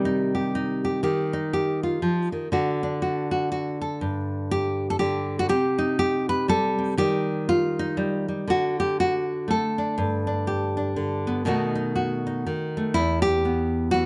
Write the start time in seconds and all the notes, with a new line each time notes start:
Already playing: C3 D#3 G3 G4
0.05 D#4
0.35 G4
0.55 D#4
0.85 G4
1.03 D#3 G4
1.33 D#4
1.53 G4
1.83 F4
2.02 F3
2.32 D#3
2.52 D3 F#4
2.83 D4
3.02 F#4
3.31 F#4
3.52 F#4
3.81 A4
4.01 G2
4.51 G4
4.90 A4
4.99 D3 G4
5.39 F#4
5.49 C3 G4
5.78 D#4
5.99 G4
6.29 B4
6.48 G3 A4
6.79 C4
6.97 D#3 G3 D#4 G4
7.49 F4
7.79 D#4
7.97 G3
8.28 G3
8.47 D3 F#4
8.80 G4
9.00 F#4
9.48 A3 A4
9.78 D4
9.98 G2
10.27 D4
10.47 G4
10.77 D4
10.96 D3
11.27 B3
11.45 B2 D#3 A3 D#4 F#4
11.75 D#4
11.96 F#4
12.27 D#4
12.46 D#3
12.77 A3
12.94 E2 E4
13.22 G4
13.45 B3
13.91 E3 F#4